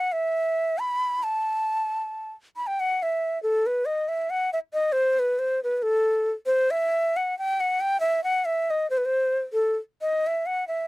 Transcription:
Already playing: F#5
0.12 E5
0.79 B5
1.23 A5
2.57 B5
2.67 G5
2.80 F#5
3.03 E5
3.43 A4
3.66 B4
3.86 D#5
4.08 E5
4.30 F#5
4.53 E5
4.73 D#5
4.92 C5
5.19 B4
5.39 C5
5.64 B4
5.77 B4
5.83 A4
6.46 C5
6.71 E5
7.17 F#5
7.39 G5
7.60 F#5
7.80 G5
8.00 E5
8.24 F#5
8.45 E5
8.70 D#5
8.90 C5
8.97 B4
9.05 C5
9.53 A4
10.01 D#5
10.27 E5
10.46 F#5
10.68 E5

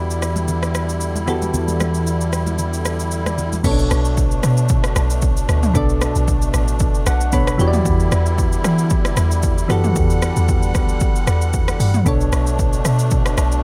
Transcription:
Already playing: E2 D3 E3 G3 B3 E4 F#4 G4 D5 B5
0.10 shaker
0.22 cross-stick, shaker
0.36 high conga, shaker
0.48 low conga, shaker
0.63 cross-stick, shaker
0.75 cross-stick, shaker
0.89 shaker
1.01 shaker
1.16 high conga, shaker
1.26 E3 B3 F#4 G4 A4, cross-stick, low conga, shaker
1.42 high conga, shaker
1.54 E2, low conga, shaker
1.68 high conga, shaker
1.80 cross-stick, high conga, shaker
1.94 shaker
2.07 shaker
2.21 shaker
2.33 cross-stick, shaker
2.46 high conga, shaker
2.58 low conga, shaker
2.74 shaker
2.85 cross-stick, shaker
3.00 shaker
3.11 shaker
3.26 cross-stick, high conga, shaker
3.38 low conga, shaker
3.53 high conga, shaker
3.63 B1 B2 A3 B3 C#4 D4 A4 C#5, kick, crash, shaker
3.71 D4
3.79 shaker
3.91 B1, cross-stick, shaker
4.05 shaker
4.17 kick, shaker
4.31 shaker
4.43 B2, cross-stick, shaker
4.57 shaker
4.69 kick, shaker
4.84 cross-stick, shaker
4.96 B1, cross-stick, shaker
5.10 shaker
5.22 kick, shaker
5.37 shaker
5.49 D2, cross-stick, shaker
5.63 mid tom, shaker
5.73 B1 B2 B3 D4 A4 D5, kick, shaker
5.89 shaker
6.01 cross-stick, shaker
6.16 B1, shaker
6.28 kick, shaker
6.42 shaker
6.54 A1, cross-stick, shaker
6.68 shaker
6.80 kick, shaker
6.95 shaker
7.06 B1 F#5, cross-stick, shaker
7.21 shaker
7.32 B2 B3 D4 A4 C#5 B5, kick, shaker
7.47 cross-stick, shaker
7.58 E2 D3 E3 G3 B3 E4 F#4 G4 C#5, shaker
7.67 D5
7.74 mid tom, shaker
7.85 E2, kick, shaker
8.00 shaker
8.12 E2, cross-stick, shaker
8.26 shaker
8.38 kick, shaker
8.52 shaker
8.64 E3, cross-stick, shaker
8.79 shaker
8.90 kick, shaker
9.05 cross-stick, shaker
9.17 E2, cross-stick, shaker
9.31 shaker
9.43 kick, shaker
9.58 shaker
9.68 F#2 E3 B3 F#4 G4 A4 F#5, cross-stick, shaker
9.84 mid tom, shaker
9.96 E2, kick, shaker
10.10 shaker
10.22 cross-stick, shaker
10.36 E2, shaker
10.49 kick, shaker
10.63 shaker
10.75 D2, kick, cross-stick, shaker
10.89 shaker
11.00 kick, shaker
11.16 shaker
11.27 E2, cross-stick, shaker
11.42 shaker
11.53 kick, shaker
11.68 cross-stick, shaker
11.80 G2, open hi-hat, shaker
11.94 mid tom, shaker
12.05 B1 B2 A3 B3 D4 A4 C#5, kick, shaker
12.21 shaker
12.32 B1, cross-stick, shaker
12.47 shaker
12.59 kick, shaker
12.73 shaker
12.85 B2, cross-stick, shaker
12.99 shaker
13.11 kick, shaker
13.26 cross-stick, shaker
13.38 B1, cross-stick, shaker
13.52 shaker

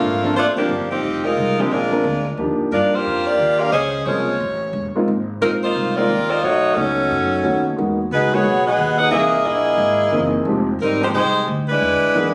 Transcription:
Already playing: A3 A#3 D4 F4
0.02 G#1
0.23 F3 A#3 C4 D4 A4
0.36 A1 A3 D4 F4 C5
0.56 F3 A#3 C4 D4 F4 G4
0.69 G1
0.91 F3 C4 D#4 G4
1.03 F1
1.24 G#3 D#4 F4 A#4
1.37 C2
1.58 D#3 F3 G#3 A#3 C4 D4 G4 G#4
1.71 A#1 G#3 D4 F4 A#4
1.91 F3 A#3 C4 D4 A#4
2.04 D2
2.37 D#2 F3 A#3 D4 D#4 G4
2.60 muted upright bass stroke
2.72 G2 G3 D4 F4 A#4
2.94 A#3 F4 G4 C5, muted upright bass stroke
3.06 F2
3.27 A#3 F4 G4 D5
3.39 D#2
3.60 D4 G4 A#4 F5
3.72 C#2 C#4 G#4 C5 D#5
4.05 C2 F3 G#3 A#3 C4 C#4 F4 G#4 C5 C#5
4.40 A1
4.73 E1
4.95 G#3 A#3 C4 D#4 F4, muted upright bass stroke
5.08 G#1
5.41 A#1 F3 G#3 A#3 C4 D#4 F4 A#4
5.62 A#3 D#4 F4 C5
5.76 C2
5.96 G#3 A#3 C4 D#4 F4 A#4 D5
6.10 D#2
6.29 A#3 D#4 F4 C5
6.43 B1 A3 D#4 F#4 C#5
6.75 C#2 F#3 A3 B3 C#4 D#4 F#4 A4
7.11 F#2
7.43 D#2 A3 B3 C#4 D#4 F#4
7.77 E2 G#3 A#3 B3 D#4 F#4
8.11 C#2 G#3 D#4 F#4 B4
8.32 G#3 A#3 B3 D#4 F#4 G#4 C#5
8.45 B1
8.66 B3 F#4 G#4 D#5
8.78 D#2
8.98 D#4 G#4 B4 F#5
9.11 C2 E3 A#3 C4 D#4 G#4 D#5 E5
9.45 A#1 A#3 E4 G#4 D#5
9.78 G#1
10.12 F#1 E3 A#3 C4 D#4 G#4
10.45 F1 F3 G#3 C4 D#4 G4
10.79 G#1 G3 C4 D#4 A#4
11.02 F3 G#3 C4 D#4 G4 C5
11.13 C2 G#3 D#4 G4 C5
11.47 D2
11.69 G#3 D4 E4 B4
11.82 E2
12.03 muted upright bass stroke
12.15 F#2 E3 A#3 B3 D4 G#4

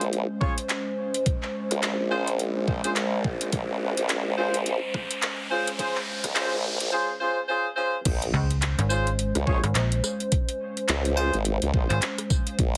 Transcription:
Already playing: A#1 G#3 C#4 C5, riser
0.01 closed hi-hat
0.13 closed hi-hat
0.41 C#4 F4 G#4 C#5, kick, cross-stick
0.58 closed hi-hat
0.69 clap, closed hi-hat
1.14 closed hi-hat
1.26 kick, closed hi-hat
1.43 clap
1.71 C#2, cross-stick, closed hi-hat
1.83 A#1, cross-stick, clap, closed hi-hat
1.99 A#1
2.11 C#4 F4 G#4 C5
2.27 closed hi-hat
2.39 closed hi-hat
2.68 kick
2.84 A#1 C#4 F4 G#4 C5, closed hi-hat
2.96 clap, closed hi-hat
3.24 kick
3.41 closed hi-hat
3.52 A#1, kick, closed hi-hat
3.89 cross-stick
3.97 A#1, closed hi-hat
4.09 cross-stick, clap, closed hi-hat
4.37 A#1 C#4 F4 G#4 C5
4.54 closed hi-hat
4.66 closed hi-hat
4.94 kick, cross-stick
5.11 closed hi-hat
5.22 clap, closed hi-hat
5.50 C#4 F4 G#4 C5
5.67 closed hi-hat
5.79 C#4 F4 G#4 C5, kick, closed hi-hat
5.96 clap
6.24 C#2, kick, cross-stick, closed hi-hat
6.35 A#1 C#4 F4 G#4 C5, cross-stick, clap, closed hi-hat
6.52 A#1
6.80 A#1, closed hi-hat
6.92 C#4 F4 G#4 C5
7.20 C#4 F4 G#4 C5
7.49 C#4 F4 G#4 C5
7.76 C#4 F4 G#4 C5
8.05 A#1 G#3 C#4 C5, kick, closed hi-hat, crash, impact
8.22 closed hi-hat
8.34 C#2
8.51 closed hi-hat
8.62 clap, closed hi-hat
8.79 G#1, closed hi-hat
8.90 C#4 F4 G#4 C5, tambourine
9.07 closed hi-hat
9.19 closed hi-hat
9.35 C#2, cross-stick, closed hi-hat
9.47 A#1 C#4 F4 G#4 C#5, kick
9.64 G#1, cross-stick, closed hi-hat
9.75 A#1, clap, closed hi-hat
9.92 closed hi-hat
10.04 cross-stick, tambourine
10.20 closed hi-hat
10.32 kick, closed hi-hat
10.49 closed hi-hat
10.77 closed hi-hat
10.89 C#2, clap, closed hi-hat
11.05 closed hi-hat
11.17 C#4 F4 G#4 C5, tambourine
11.33 G#1, closed hi-hat
11.45 closed hi-hat
11.62 C#2, closed hi-hat
11.74 A#1, kick
11.90 G#1 C#4 F4 G#4 C5, closed hi-hat
12.02 clap, closed hi-hat
12.18 cross-stick, closed hi-hat
12.30 kick, tambourine
12.47 closed hi-hat
12.59 A#1 F4, kick, closed hi-hat

